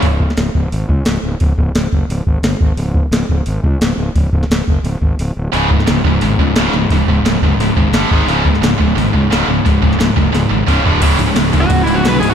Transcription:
0.02 C#1, kick, open hi-hat
0.20 kick
0.30 snare
0.37 C#1, snare, open hi-hat
0.55 C#1, kick
0.72 G#1, open hi-hat
0.89 C#2, kick
1.05 C#1, snare, open hi-hat
1.23 C#1
1.40 C#1, kick, open hi-hat
1.58 C#1, kick
1.75 C#1, snare, open hi-hat
1.92 F#1, kick
2.09 C#1, open hi-hat
2.27 G#1, kick
2.43 G1, snare, open hi-hat
2.61 G#1, kick
2.77 C#1, open hi-hat
2.95 kick
3.11 C#1, snare, open hi-hat
3.29 C#1, kick
3.46 G#1, open hi-hat
3.64 C#2, kick
3.81 C#1, snare, open hi-hat
3.98 C#1
4.15 C#1, kick, open hi-hat
4.33 C#1, kick
4.43 snare
4.50 C#1, snare, open hi-hat
4.68 F#1, kick
4.84 C#1, open hi-hat
5.01 G#1, kick
5.19 C#1, open hi-hat
5.37 D1
5.52 C#1 C#2 G#2 C#3, open hi-hat
5.70 C#2 G#2, kick
5.80 snare
5.86 C#1 C#2 G#2, snare, open hi-hat
6.04 C#1 C#2 G#2, kick
6.21 G#1 C#2 G#2, open hi-hat
6.38 C#2 G#2, kick
6.56 C#1 C#2 G#2 C#3, snare, open hi-hat
6.73 C#1 C#2 G#2, snare
6.90 C#1 C#2 G#2, kick, open hi-hat
7.08 C#1 C#2 G#2, kick
7.24 C#1 C#2 G#2, snare, open hi-hat
7.42 F#1 C#2 G#2, kick
7.59 C#1 C#2 G#2, open hi-hat
7.77 G#1 C#2 G#2, kick
7.93 G1 G2 D3 G3, snare, open hi-hat
8.10 G#1 G#2 D#3 G#3, kick
8.27 C#1 C#2 G#2 C#3, open hi-hat
8.45 C#2 G#2, kick
8.55 snare
8.62 C#1 C#2 G#2, snare, open hi-hat
8.78 C#1 C#2 G#2, kick
8.95 G#1 C#2 G#2, open hi-hat
9.13 C#2 G#2, kick
9.30 C#1 C#2 G#2 C#3, snare, open hi-hat
9.48 C#1 C#2 G#2
9.65 C#1 C#2 G#2, kick, open hi-hat
9.82 C#1 C#2 G#2, kick
9.93 snare
9.99 C#1 C#2 G#2, snare, open hi-hat
10.16 F#1 C#2 G#2, kick
10.33 C#1 C#2 G#2, snare, open hi-hat
10.49 G#1 C#2 G#2
10.67 C#1 C#2 G#2 C#3, kick, open hi-hat
10.83 D1 D2 A2 D3, floor tom
11.01 C#1 C#2 G#2 C#3, kick, crash
11.19 C#1 C#2 G#2 C#3, crash
11.27 C#2 G#2
11.36 C#1 C#2 G#2 C#3, snare, crash
11.53 C#2 G#2 C#3, kick, crash
11.61 C#2 G#2 F#4
11.70 C#1 C#2 G#2 C#3, kick, crash
11.83 C#1 G#2 E4
11.87 C#2 C#3, crash
11.94 C#2 G#2 F#4
12.03 B1 C#2 G#2 C#3, snare, crash
12.08 B4
12.12 C#2 G#2
12.20 C#1 C#2 G#2 C#3 G#4, crash
12.30 C#2 G#2 F#4

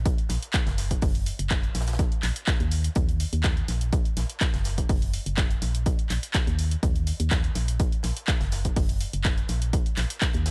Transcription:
Already playing: A#1
0.05 kick, closed hi-hat
0.18 closed hi-hat
0.29 A#1, snare, closed hi-hat, open hi-hat
0.43 closed hi-hat
0.53 kick, snare, clap, closed hi-hat
0.67 F#1, snare, closed hi-hat
0.78 snare, closed hi-hat, open hi-hat
0.91 kick, closed hi-hat
1.02 F#1, kick, closed hi-hat, open hi-hat
1.15 closed hi-hat
1.26 closed hi-hat, open hi-hat
1.39 F#1, closed hi-hat
1.50 kick, snare, clap, closed hi-hat
1.63 closed hi-hat
1.75 A#1, snare, closed hi-hat, open hi-hat
1.81 snare, closed hi-hat
1.87 snare, closed hi-hat
1.93 snare, closed hi-hat
1.99 kick, closed hi-hat
2.12 closed hi-hat
2.23 A#1, clap, closed hi-hat, open hi-hat
2.36 closed hi-hat
2.47 kick, snare, clap, closed hi-hat
2.60 D#2, closed hi-hat
2.71 closed hi-hat, open hi-hat
2.84 closed hi-hat
2.95 D#2, kick, closed hi-hat
3.09 closed hi-hat
3.20 closed hi-hat, open hi-hat
3.33 D#2, closed hi-hat
3.44 kick, snare, clap, closed hi-hat
3.57 closed hi-hat
3.68 A#1, snare, closed hi-hat, open hi-hat
3.81 closed hi-hat
3.93 kick, closed hi-hat
4.05 closed hi-hat
4.17 A#1, snare, closed hi-hat, open hi-hat
4.30 closed hi-hat
4.41 kick, snare, clap, closed hi-hat
4.54 F#1, snare, closed hi-hat
4.64 snare, closed hi-hat, open hi-hat
4.78 kick, closed hi-hat
4.89 F#1, kick, closed hi-hat, open hi-hat
5.02 closed hi-hat
5.13 closed hi-hat, open hi-hat
5.26 F#1, closed hi-hat
5.37 kick, snare, clap, closed hi-hat
5.50 closed hi-hat
5.62 A#1, snare, closed hi-hat, open hi-hat
5.75 closed hi-hat
5.86 kick, closed hi-hat
5.99 closed hi-hat
6.10 A#1, clap, closed hi-hat, open hi-hat
6.23 closed hi-hat
6.34 kick, snare, clap, closed hi-hat
6.47 D#2, closed hi-hat
6.59 closed hi-hat, open hi-hat
6.71 closed hi-hat
6.83 D#2, kick, closed hi-hat
6.95 closed hi-hat
7.07 closed hi-hat, open hi-hat
7.20 D#2, closed hi-hat
7.31 kick, snare, clap, closed hi-hat
7.44 closed hi-hat
7.55 A#1, snare, closed hi-hat, open hi-hat
7.68 closed hi-hat
7.79 kick, closed hi-hat
7.92 closed hi-hat
8.03 A#1, snare, closed hi-hat, open hi-hat
8.17 closed hi-hat
8.28 kick, snare, clap, closed hi-hat
8.40 F#1, snare, closed hi-hat
8.52 snare, closed hi-hat, open hi-hat
8.65 kick, closed hi-hat
8.76 F#1, kick, closed hi-hat, open hi-hat
8.89 closed hi-hat
9.01 closed hi-hat, open hi-hat
9.13 F#1, closed hi-hat
9.24 kick, snare, clap, closed hi-hat
9.37 closed hi-hat
9.48 A#1, snare, closed hi-hat, open hi-hat
9.62 closed hi-hat
9.73 kick, closed hi-hat
9.86 closed hi-hat
9.96 A#1, snare, clap, closed hi-hat, open hi-hat
10.10 closed hi-hat
10.21 kick, snare, clap, closed hi-hat
10.33 D#2, closed hi-hat
10.46 snare, closed hi-hat, open hi-hat

